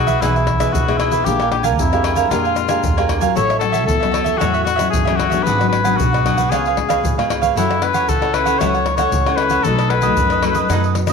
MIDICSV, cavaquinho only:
0, 0, Header, 1, 3, 480
1, 0, Start_track
1, 0, Key_signature, 4, "major"
1, 0, Tempo, 524476
1, 1159, Time_signature, 4, 2, 24, 8
1, 10185, End_track
2, 0, Start_track
2, 0, Title_t, "Cavaquinho"
2, 0, Program_c, 0, 24
2, 63, Note_on_c, 0, 76, 72
2, 65, Note_on_c, 0, 71, 59
2, 75, Note_on_c, 0, 68, 61
2, 181, Note_off_c, 0, 76, 0
2, 182, Note_off_c, 0, 71, 0
2, 187, Note_off_c, 0, 68, 0
2, 205, Note_on_c, 0, 63, 69
2, 206, Note_on_c, 0, 68, 70
2, 214, Note_on_c, 0, 71, 85
2, 221, Note_on_c, 0, 76, 80
2, 312, Note_off_c, 0, 63, 0
2, 312, Note_off_c, 0, 68, 0
2, 315, Note_off_c, 0, 76, 0
2, 316, Note_off_c, 0, 71, 0
2, 326, Note_on_c, 0, 76, 43
2, 333, Note_on_c, 0, 71, 46
2, 344, Note_on_c, 0, 68, 40
2, 433, Note_off_c, 0, 76, 0
2, 434, Note_off_c, 0, 68, 0
2, 436, Note_off_c, 0, 71, 0
2, 549, Note_on_c, 0, 76, 72
2, 556, Note_on_c, 0, 71, 67
2, 563, Note_on_c, 0, 68, 56
2, 784, Note_off_c, 0, 76, 0
2, 787, Note_off_c, 0, 71, 0
2, 791, Note_off_c, 0, 68, 0
2, 815, Note_on_c, 0, 76, 47
2, 825, Note_on_c, 0, 71, 43
2, 834, Note_on_c, 0, 68, 38
2, 905, Note_off_c, 0, 68, 0
2, 906, Note_on_c, 0, 63, 55
2, 910, Note_off_c, 0, 71, 0
2, 914, Note_off_c, 0, 76, 0
2, 916, Note_on_c, 0, 68, 53
2, 921, Note_on_c, 0, 71, 54
2, 925, Note_on_c, 0, 76, 55
2, 1012, Note_off_c, 0, 76, 0
2, 1022, Note_off_c, 0, 63, 0
2, 1022, Note_off_c, 0, 71, 0
2, 1023, Note_on_c, 0, 76, 63
2, 1028, Note_off_c, 0, 68, 0
2, 1033, Note_on_c, 0, 71, 58
2, 1042, Note_on_c, 0, 68, 56
2, 1141, Note_off_c, 0, 76, 0
2, 1146, Note_off_c, 0, 71, 0
2, 1150, Note_off_c, 0, 68, 0
2, 1157, Note_on_c, 0, 62, 76
2, 1161, Note_on_c, 0, 70, 69
2, 1166, Note_on_c, 0, 77, 69
2, 1167, Note_on_c, 0, 80, 69
2, 1268, Note_off_c, 0, 62, 0
2, 1270, Note_off_c, 0, 70, 0
2, 1273, Note_off_c, 0, 77, 0
2, 1273, Note_off_c, 0, 80, 0
2, 1287, Note_on_c, 0, 80, 49
2, 1300, Note_on_c, 0, 77, 46
2, 1302, Note_on_c, 0, 70, 37
2, 1383, Note_off_c, 0, 70, 0
2, 1388, Note_off_c, 0, 77, 0
2, 1389, Note_off_c, 0, 80, 0
2, 1493, Note_on_c, 0, 80, 66
2, 1504, Note_on_c, 0, 77, 59
2, 1511, Note_on_c, 0, 70, 58
2, 1736, Note_off_c, 0, 80, 0
2, 1742, Note_off_c, 0, 77, 0
2, 1745, Note_off_c, 0, 70, 0
2, 1755, Note_on_c, 0, 80, 52
2, 1765, Note_on_c, 0, 77, 46
2, 1767, Note_on_c, 0, 70, 46
2, 1864, Note_off_c, 0, 70, 0
2, 1865, Note_off_c, 0, 77, 0
2, 1867, Note_on_c, 0, 62, 54
2, 1868, Note_off_c, 0, 80, 0
2, 1875, Note_on_c, 0, 70, 53
2, 1876, Note_on_c, 0, 77, 56
2, 1885, Note_on_c, 0, 80, 57
2, 1962, Note_off_c, 0, 80, 0
2, 1973, Note_off_c, 0, 77, 0
2, 1973, Note_on_c, 0, 80, 69
2, 1975, Note_off_c, 0, 70, 0
2, 1984, Note_off_c, 0, 62, 0
2, 1984, Note_on_c, 0, 77, 61
2, 1986, Note_on_c, 0, 70, 59
2, 2096, Note_off_c, 0, 80, 0
2, 2102, Note_off_c, 0, 77, 0
2, 2103, Note_off_c, 0, 70, 0
2, 2112, Note_on_c, 0, 62, 66
2, 2121, Note_on_c, 0, 70, 71
2, 2126, Note_on_c, 0, 77, 71
2, 2130, Note_on_c, 0, 80, 78
2, 2224, Note_off_c, 0, 80, 0
2, 2226, Note_off_c, 0, 62, 0
2, 2230, Note_off_c, 0, 70, 0
2, 2233, Note_off_c, 0, 77, 0
2, 2235, Note_on_c, 0, 80, 46
2, 2249, Note_on_c, 0, 77, 46
2, 2254, Note_on_c, 0, 70, 42
2, 2346, Note_off_c, 0, 77, 0
2, 2347, Note_off_c, 0, 70, 0
2, 2348, Note_off_c, 0, 80, 0
2, 2460, Note_on_c, 0, 80, 65
2, 2467, Note_on_c, 0, 77, 61
2, 2472, Note_on_c, 0, 70, 55
2, 2700, Note_off_c, 0, 80, 0
2, 2704, Note_off_c, 0, 77, 0
2, 2707, Note_off_c, 0, 70, 0
2, 2719, Note_on_c, 0, 80, 51
2, 2729, Note_on_c, 0, 77, 50
2, 2736, Note_on_c, 0, 70, 41
2, 2822, Note_off_c, 0, 70, 0
2, 2823, Note_off_c, 0, 77, 0
2, 2827, Note_on_c, 0, 62, 45
2, 2830, Note_off_c, 0, 80, 0
2, 2833, Note_on_c, 0, 70, 45
2, 2834, Note_on_c, 0, 77, 51
2, 2841, Note_on_c, 0, 80, 56
2, 2926, Note_off_c, 0, 80, 0
2, 2935, Note_off_c, 0, 77, 0
2, 2937, Note_on_c, 0, 80, 71
2, 2944, Note_off_c, 0, 62, 0
2, 2944, Note_off_c, 0, 70, 0
2, 2946, Note_on_c, 0, 77, 64
2, 2955, Note_on_c, 0, 70, 53
2, 3059, Note_off_c, 0, 80, 0
2, 3063, Note_off_c, 0, 77, 0
2, 3068, Note_off_c, 0, 70, 0
2, 3069, Note_on_c, 0, 66, 75
2, 3077, Note_on_c, 0, 69, 71
2, 3083, Note_on_c, 0, 73, 71
2, 3086, Note_on_c, 0, 76, 73
2, 3185, Note_off_c, 0, 66, 0
2, 3186, Note_off_c, 0, 76, 0
2, 3189, Note_off_c, 0, 69, 0
2, 3192, Note_off_c, 0, 73, 0
2, 3197, Note_on_c, 0, 76, 46
2, 3204, Note_on_c, 0, 73, 42
2, 3210, Note_on_c, 0, 69, 37
2, 3288, Note_off_c, 0, 69, 0
2, 3293, Note_off_c, 0, 73, 0
2, 3294, Note_off_c, 0, 76, 0
2, 3407, Note_on_c, 0, 76, 64
2, 3411, Note_on_c, 0, 73, 54
2, 3424, Note_on_c, 0, 69, 58
2, 3649, Note_off_c, 0, 76, 0
2, 3653, Note_off_c, 0, 73, 0
2, 3660, Note_on_c, 0, 76, 49
2, 3662, Note_off_c, 0, 69, 0
2, 3664, Note_on_c, 0, 73, 47
2, 3679, Note_on_c, 0, 69, 45
2, 3761, Note_off_c, 0, 69, 0
2, 3764, Note_on_c, 0, 66, 58
2, 3767, Note_off_c, 0, 73, 0
2, 3772, Note_off_c, 0, 76, 0
2, 3772, Note_on_c, 0, 69, 60
2, 3778, Note_on_c, 0, 73, 61
2, 3783, Note_on_c, 0, 76, 60
2, 3872, Note_off_c, 0, 76, 0
2, 3883, Note_on_c, 0, 76, 69
2, 3884, Note_off_c, 0, 73, 0
2, 3887, Note_off_c, 0, 69, 0
2, 3893, Note_off_c, 0, 66, 0
2, 3895, Note_on_c, 0, 73, 58
2, 3898, Note_on_c, 0, 69, 59
2, 4012, Note_off_c, 0, 76, 0
2, 4018, Note_off_c, 0, 73, 0
2, 4019, Note_off_c, 0, 69, 0
2, 4022, Note_on_c, 0, 66, 79
2, 4029, Note_on_c, 0, 69, 73
2, 4035, Note_on_c, 0, 76, 70
2, 4036, Note_on_c, 0, 73, 83
2, 4140, Note_off_c, 0, 76, 0
2, 4141, Note_off_c, 0, 66, 0
2, 4145, Note_off_c, 0, 69, 0
2, 4149, Note_off_c, 0, 73, 0
2, 4151, Note_on_c, 0, 76, 55
2, 4160, Note_on_c, 0, 73, 47
2, 4162, Note_on_c, 0, 69, 40
2, 4243, Note_off_c, 0, 73, 0
2, 4244, Note_off_c, 0, 69, 0
2, 4251, Note_off_c, 0, 76, 0
2, 4354, Note_on_c, 0, 76, 70
2, 4365, Note_on_c, 0, 73, 62
2, 4372, Note_on_c, 0, 69, 53
2, 4608, Note_off_c, 0, 76, 0
2, 4613, Note_off_c, 0, 73, 0
2, 4617, Note_off_c, 0, 69, 0
2, 4620, Note_on_c, 0, 76, 51
2, 4625, Note_on_c, 0, 73, 50
2, 4636, Note_on_c, 0, 69, 42
2, 4732, Note_off_c, 0, 69, 0
2, 4736, Note_on_c, 0, 66, 46
2, 4737, Note_off_c, 0, 73, 0
2, 4741, Note_off_c, 0, 76, 0
2, 4743, Note_on_c, 0, 69, 46
2, 4748, Note_on_c, 0, 73, 56
2, 4754, Note_on_c, 0, 76, 55
2, 4838, Note_off_c, 0, 76, 0
2, 4848, Note_off_c, 0, 73, 0
2, 4849, Note_on_c, 0, 76, 69
2, 4853, Note_off_c, 0, 69, 0
2, 4858, Note_off_c, 0, 66, 0
2, 4859, Note_on_c, 0, 73, 62
2, 4864, Note_on_c, 0, 69, 53
2, 4975, Note_off_c, 0, 76, 0
2, 4980, Note_off_c, 0, 73, 0
2, 4982, Note_off_c, 0, 69, 0
2, 4994, Note_on_c, 0, 62, 69
2, 4994, Note_on_c, 0, 68, 69
2, 5005, Note_on_c, 0, 71, 72
2, 5005, Note_on_c, 0, 78, 82
2, 5104, Note_off_c, 0, 78, 0
2, 5107, Note_off_c, 0, 62, 0
2, 5107, Note_off_c, 0, 68, 0
2, 5113, Note_off_c, 0, 71, 0
2, 5115, Note_on_c, 0, 78, 42
2, 5125, Note_on_c, 0, 71, 47
2, 5133, Note_on_c, 0, 68, 40
2, 5228, Note_off_c, 0, 78, 0
2, 5230, Note_off_c, 0, 68, 0
2, 5230, Note_off_c, 0, 71, 0
2, 5347, Note_on_c, 0, 78, 62
2, 5350, Note_on_c, 0, 71, 63
2, 5363, Note_on_c, 0, 68, 53
2, 5584, Note_off_c, 0, 78, 0
2, 5585, Note_off_c, 0, 71, 0
2, 5592, Note_off_c, 0, 68, 0
2, 5607, Note_on_c, 0, 78, 53
2, 5613, Note_on_c, 0, 71, 49
2, 5623, Note_on_c, 0, 68, 45
2, 5714, Note_off_c, 0, 78, 0
2, 5715, Note_off_c, 0, 68, 0
2, 5717, Note_off_c, 0, 71, 0
2, 5719, Note_on_c, 0, 62, 54
2, 5726, Note_on_c, 0, 68, 62
2, 5733, Note_on_c, 0, 71, 59
2, 5735, Note_on_c, 0, 78, 65
2, 5822, Note_off_c, 0, 78, 0
2, 5830, Note_off_c, 0, 62, 0
2, 5830, Note_off_c, 0, 71, 0
2, 5833, Note_off_c, 0, 68, 0
2, 5833, Note_on_c, 0, 78, 70
2, 5841, Note_on_c, 0, 71, 61
2, 5847, Note_on_c, 0, 68, 54
2, 5947, Note_off_c, 0, 78, 0
2, 5951, Note_off_c, 0, 71, 0
2, 5954, Note_off_c, 0, 68, 0
2, 5963, Note_on_c, 0, 65, 74
2, 5969, Note_on_c, 0, 71, 69
2, 5973, Note_on_c, 0, 73, 80
2, 5977, Note_on_c, 0, 77, 84
2, 6072, Note_off_c, 0, 65, 0
2, 6075, Note_off_c, 0, 71, 0
2, 6077, Note_off_c, 0, 73, 0
2, 6079, Note_off_c, 0, 77, 0
2, 6103, Note_on_c, 0, 77, 52
2, 6107, Note_on_c, 0, 73, 43
2, 6115, Note_on_c, 0, 71, 42
2, 6187, Note_off_c, 0, 71, 0
2, 6192, Note_off_c, 0, 73, 0
2, 6197, Note_off_c, 0, 77, 0
2, 6301, Note_on_c, 0, 77, 66
2, 6311, Note_on_c, 0, 73, 60
2, 6315, Note_on_c, 0, 71, 54
2, 6540, Note_off_c, 0, 77, 0
2, 6545, Note_off_c, 0, 73, 0
2, 6547, Note_off_c, 0, 71, 0
2, 6568, Note_on_c, 0, 77, 46
2, 6576, Note_on_c, 0, 73, 43
2, 6582, Note_on_c, 0, 71, 41
2, 6667, Note_off_c, 0, 71, 0
2, 6668, Note_off_c, 0, 73, 0
2, 6674, Note_off_c, 0, 77, 0
2, 6676, Note_on_c, 0, 65, 48
2, 6678, Note_on_c, 0, 71, 54
2, 6679, Note_on_c, 0, 73, 52
2, 6687, Note_on_c, 0, 77, 55
2, 6776, Note_off_c, 0, 77, 0
2, 6780, Note_off_c, 0, 73, 0
2, 6787, Note_on_c, 0, 77, 60
2, 6788, Note_off_c, 0, 65, 0
2, 6789, Note_off_c, 0, 71, 0
2, 6791, Note_on_c, 0, 73, 55
2, 6801, Note_on_c, 0, 71, 57
2, 6903, Note_off_c, 0, 77, 0
2, 6905, Note_off_c, 0, 73, 0
2, 6910, Note_off_c, 0, 71, 0
2, 6914, Note_on_c, 0, 64, 61
2, 6922, Note_on_c, 0, 69, 76
2, 6930, Note_on_c, 0, 73, 68
2, 6931, Note_on_c, 0, 78, 76
2, 7027, Note_off_c, 0, 64, 0
2, 7029, Note_off_c, 0, 78, 0
2, 7030, Note_off_c, 0, 69, 0
2, 7034, Note_off_c, 0, 73, 0
2, 7040, Note_on_c, 0, 78, 51
2, 7047, Note_on_c, 0, 73, 45
2, 7053, Note_on_c, 0, 69, 38
2, 7146, Note_off_c, 0, 73, 0
2, 7148, Note_off_c, 0, 69, 0
2, 7149, Note_off_c, 0, 78, 0
2, 7268, Note_on_c, 0, 78, 66
2, 7279, Note_on_c, 0, 73, 61
2, 7283, Note_on_c, 0, 69, 56
2, 7503, Note_off_c, 0, 78, 0
2, 7508, Note_off_c, 0, 73, 0
2, 7511, Note_off_c, 0, 69, 0
2, 7516, Note_on_c, 0, 78, 47
2, 7522, Note_on_c, 0, 73, 51
2, 7531, Note_on_c, 0, 69, 42
2, 7616, Note_off_c, 0, 69, 0
2, 7626, Note_on_c, 0, 64, 53
2, 7627, Note_off_c, 0, 73, 0
2, 7627, Note_off_c, 0, 78, 0
2, 7627, Note_on_c, 0, 69, 59
2, 7638, Note_on_c, 0, 73, 61
2, 7643, Note_on_c, 0, 78, 61
2, 7726, Note_off_c, 0, 78, 0
2, 7733, Note_off_c, 0, 73, 0
2, 7737, Note_on_c, 0, 78, 70
2, 7739, Note_off_c, 0, 69, 0
2, 7742, Note_off_c, 0, 64, 0
2, 7744, Note_on_c, 0, 73, 61
2, 7750, Note_on_c, 0, 69, 54
2, 7857, Note_off_c, 0, 78, 0
2, 7861, Note_off_c, 0, 73, 0
2, 7864, Note_off_c, 0, 69, 0
2, 7874, Note_on_c, 0, 64, 77
2, 7881, Note_on_c, 0, 69, 78
2, 7885, Note_on_c, 0, 73, 80
2, 7893, Note_on_c, 0, 78, 78
2, 7986, Note_off_c, 0, 64, 0
2, 7988, Note_off_c, 0, 78, 0
2, 7989, Note_off_c, 0, 69, 0
2, 7991, Note_off_c, 0, 73, 0
2, 7999, Note_on_c, 0, 78, 52
2, 8006, Note_on_c, 0, 73, 43
2, 8013, Note_on_c, 0, 69, 41
2, 8108, Note_off_c, 0, 78, 0
2, 8111, Note_off_c, 0, 69, 0
2, 8112, Note_off_c, 0, 73, 0
2, 8226, Note_on_c, 0, 78, 69
2, 8233, Note_on_c, 0, 73, 63
2, 8240, Note_on_c, 0, 69, 57
2, 8461, Note_off_c, 0, 78, 0
2, 8465, Note_off_c, 0, 73, 0
2, 8468, Note_off_c, 0, 69, 0
2, 8485, Note_on_c, 0, 78, 57
2, 8492, Note_on_c, 0, 73, 49
2, 8503, Note_on_c, 0, 69, 41
2, 8584, Note_off_c, 0, 69, 0
2, 8587, Note_on_c, 0, 64, 43
2, 8588, Note_off_c, 0, 73, 0
2, 8591, Note_off_c, 0, 78, 0
2, 8595, Note_on_c, 0, 69, 47
2, 8599, Note_on_c, 0, 73, 55
2, 8606, Note_on_c, 0, 78, 54
2, 8687, Note_off_c, 0, 78, 0
2, 8692, Note_off_c, 0, 73, 0
2, 8698, Note_on_c, 0, 78, 60
2, 8701, Note_off_c, 0, 69, 0
2, 8702, Note_off_c, 0, 64, 0
2, 8703, Note_on_c, 0, 73, 64
2, 8712, Note_on_c, 0, 69, 58
2, 8817, Note_off_c, 0, 78, 0
2, 8820, Note_off_c, 0, 73, 0
2, 8824, Note_off_c, 0, 69, 0
2, 8834, Note_on_c, 0, 63, 66
2, 8838, Note_on_c, 0, 69, 72
2, 8843, Note_on_c, 0, 71, 68
2, 8852, Note_on_c, 0, 75, 72
2, 8945, Note_off_c, 0, 63, 0
2, 8947, Note_off_c, 0, 69, 0
2, 8950, Note_off_c, 0, 71, 0
2, 8950, Note_off_c, 0, 75, 0
2, 8961, Note_on_c, 0, 75, 47
2, 8969, Note_on_c, 0, 71, 44
2, 8974, Note_on_c, 0, 69, 43
2, 9065, Note_off_c, 0, 69, 0
2, 9065, Note_off_c, 0, 71, 0
2, 9065, Note_off_c, 0, 75, 0
2, 9177, Note_on_c, 0, 75, 69
2, 9186, Note_on_c, 0, 71, 61
2, 9190, Note_on_c, 0, 69, 55
2, 9416, Note_off_c, 0, 75, 0
2, 9421, Note_off_c, 0, 71, 0
2, 9423, Note_off_c, 0, 69, 0
2, 9443, Note_on_c, 0, 75, 54
2, 9449, Note_on_c, 0, 71, 50
2, 9458, Note_on_c, 0, 69, 40
2, 9541, Note_off_c, 0, 69, 0
2, 9542, Note_on_c, 0, 63, 58
2, 9545, Note_off_c, 0, 71, 0
2, 9549, Note_off_c, 0, 75, 0
2, 9552, Note_on_c, 0, 69, 63
2, 9556, Note_on_c, 0, 71, 56
2, 9559, Note_on_c, 0, 75, 62
2, 9646, Note_off_c, 0, 75, 0
2, 9656, Note_off_c, 0, 71, 0
2, 9657, Note_on_c, 0, 75, 70
2, 9659, Note_off_c, 0, 63, 0
2, 9663, Note_off_c, 0, 69, 0
2, 9667, Note_on_c, 0, 71, 67
2, 9675, Note_on_c, 0, 69, 54
2, 9776, Note_off_c, 0, 75, 0
2, 9781, Note_off_c, 0, 71, 0
2, 9785, Note_off_c, 0, 69, 0
2, 9805, Note_on_c, 0, 63, 82
2, 9811, Note_on_c, 0, 69, 69
2, 9817, Note_on_c, 0, 71, 77
2, 9822, Note_on_c, 0, 75, 76
2, 9910, Note_off_c, 0, 63, 0
2, 9913, Note_off_c, 0, 69, 0
2, 9916, Note_off_c, 0, 71, 0
2, 9918, Note_off_c, 0, 75, 0
2, 9932, Note_on_c, 0, 75, 53
2, 9939, Note_on_c, 0, 71, 42
2, 9942, Note_on_c, 0, 69, 41
2, 10027, Note_off_c, 0, 71, 0
2, 10031, Note_off_c, 0, 69, 0
2, 10033, Note_off_c, 0, 75, 0
2, 10153, Note_on_c, 0, 75, 68
2, 10185, Note_off_c, 0, 75, 0
2, 10185, End_track
3, 0, Start_track
3, 0, Title_t, "Muted cavaquinho strokes"
3, 442, Note_on_c, 9, 29, 40
3, 533, Note_off_c, 9, 29, 0
3, 1391, Note_on_c, 9, 29, 33
3, 1482, Note_off_c, 9, 29, 0
3, 2349, Note_on_c, 9, 29, 38
3, 2440, Note_off_c, 9, 29, 0
3, 3299, Note_on_c, 9, 29, 39
3, 3391, Note_off_c, 9, 29, 0
3, 4251, Note_on_c, 9, 29, 36
3, 4342, Note_off_c, 9, 29, 0
3, 5236, Note_on_c, 9, 29, 35
3, 5328, Note_off_c, 9, 29, 0
3, 6198, Note_on_c, 9, 29, 44
3, 6290, Note_off_c, 9, 29, 0
3, 8119, Note_on_c, 9, 29, 38
3, 8210, Note_off_c, 9, 29, 0
3, 9070, Note_on_c, 9, 29, 34
3, 9161, Note_off_c, 9, 29, 0
3, 10030, Note_on_c, 9, 29, 42
3, 10122, Note_off_c, 9, 29, 0
3, 10185, End_track
0, 0, End_of_file